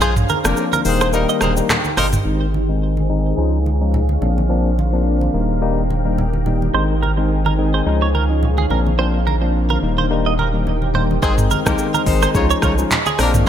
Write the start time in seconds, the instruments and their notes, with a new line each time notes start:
Already playing: sub bass A#1, ambient pad D4 A#4 C5 F5
0.01 horn section G#3 F4 G#4, clean electric guitar C5, shaker
0.16 mid tom, shaker
0.29 clean electric guitar A#4, high conga, shaker
0.44 sub bass F1, tine electric piano F3 A#3 C4 D4, horn section F3 D4 A#4, cross-stick, shaker
0.57 shaker
0.73 clean electric guitar A#4, high conga, shaker
0.85 sub bass D#1, tine electric piano D#3 G3 A#3 D#4, horn section C4 G#4 C5, ambient pad D#4 G4 A#4 G5, open hi-hat, shaker
1.01 clean electric guitar C5, cross-stick, shaker
1.13 tine electric piano D#3 G3 A#3 D#4, horn section G3 D#4 A#4, shaker
1.29 clean electric guitar D#5, shaker
1.41 sub bass D#1, horn section C4 G#4 C5, clean electric guitar A#4, cross-stick, high conga, shaker
1.56 tine electric piano D#3 G3 A#3 D#4, shaker
1.70 cross-stick, clap, low conga, shaker
1.84 high conga, shaker
1.97 sub bass G1, horn section G3 D#4 A#4, clean electric guitar C5, cross-stick, open hi-hat, low conga, shaker
2.13 mid tom, high conga, shaker
2.25 sub bass G#1, tine electric piano D#3 G#3 C4 D#4, ambient pad D#4 G#4 C5 G#5
2.54 high conga
2.69 tine electric piano D#3 G#3 C4 D#4
2.97 high conga
3.09 tine electric piano D#3 G#3 C4 D#4
3.37 sub bass C#2, tine electric piano F3 G#3 C#4 D#4, ambient pad C#5 F5
3.66 high conga
3.81 tine electric piano F3 G#3 C#4 D#4
3.94 low conga
4.09 high conga
4.21 sub bass A#1, tine electric piano F3 A#3 C4 D4, ambient pad D4 A#4 C5, low conga
4.38 high conga
4.49 tine electric piano F3 A#3 C4 D4
4.79 high conga
4.93 tine electric piano F3 A#3 C4 D4
5.21 high conga
5.34 sub bass D#1, tine electric piano D#3 G3 A#3 D#4, ambient pad D#4 G4 A#4 G5
5.61 tine electric piano D#3 G3 A#3 D#4
5.90 high conga
6.05 tine electric piano D#3 G3 A#3 D#4
6.18 low conga
6.33 high conga
6.46 tine electric piano D#3 G3 A#3 D#4, low conga
6.62 high conga
6.74 sub bass G#1, tine electric piano D#3 G#3 C4 D#4, ambient pad G#4 C5 G#5, clean electric guitar C5
7.03 clean electric guitar A#4, high conga
7.17 tine electric piano D#3 G#3 C4 D#4
7.46 clean electric guitar A#4, high conga
7.58 tine electric piano D#3 G#3 C4 D#4
7.74 clean electric guitar C5
7.86 sub bass C#2, tine electric piano F3 G#3 C#4 D#4, ambient pad C#5 F5
8.02 clean electric guitar C#5
8.15 clean electric guitar A#4, high conga
8.29 tine electric piano F3 G#3 C#4 D#4
8.43 low conga
8.58 clean electric guitar G#4, high conga
8.70 sub bass A#1, tine electric piano F3 A#3 C4 D4, ambient pad D4 A#4 C5, clean electric guitar A#4, low conga
8.86 high conga
8.98 tine electric piano F3 A#3 C4 D4, clean electric guitar C5
9.27 clean electric guitar A#4, high conga
9.41 tine electric piano F3 A#3 C4 D4
9.70 clean electric guitar A#4, high conga
9.82 sub bass D#1, tine electric piano D#3 G3 A#3 D#4, ambient pad D#4 G4 G5
9.98 clean electric guitar C5, high conga
10.10 tine electric piano D#3 G3 A#3 D#4
10.26 clean electric guitar D#5
10.39 clean electric guitar A#4, high conga
10.54 tine electric piano D#3 G3 A#3 D#4
10.67 low conga
10.82 high conga
10.94 tine electric piano D#3 G3 A#3 D#4, clean electric guitar C5, low conga
11.11 high conga
11.22 sub bass G#1, tine electric piano D#3 G#3 C4 D#4, horn section D#3 C4 G#4, ambient pad G#4 C5 D#5 C6, clean electric guitar C5, kick, shaker
11.38 mid tom, shaker
11.51 clean electric guitar A#4, high conga, shaker
11.66 sub bass C2, tine electric piano D#3 G#3 C4 D#4, horn section A#3 G4 A#4, kick, cross-stick, shaker
11.78 shaker
11.94 clean electric guitar A#4, high conga, shaker
12.06 sub bass G#1, tine electric piano D#3 G#3 C4 D#4, horn section G#3 D#4 C5, kick, open hi-hat, shaker
12.22 clean electric guitar C5, cross-stick, shaker
12.34 sub bass C#2, tine electric piano F3 G#3 C#4 D#4, horn section G#3 F4 C#5, ambient pad F5 C#6, kick, shaker
12.50 clean electric guitar C#5, shaker
12.62 sub bass C2, horn section G#3 F4 C#5, clean electric guitar A#4, kick, cross-stick, high conga, shaker
12.78 tine electric piano F3 G#3 C#4 D#4, shaker
12.91 clap, low conga, shaker
13.06 clean electric guitar G#4, high conga, shaker
13.19 sub bass A#1, tine electric piano F3 A#3 C4 D4, horn section F3 D4 A#4, ambient pad A#4 D5 C6, clean electric guitar A#4, cross-stick, open hi-hat, low conga, shaker
13.34 mid tom, high conga, shaker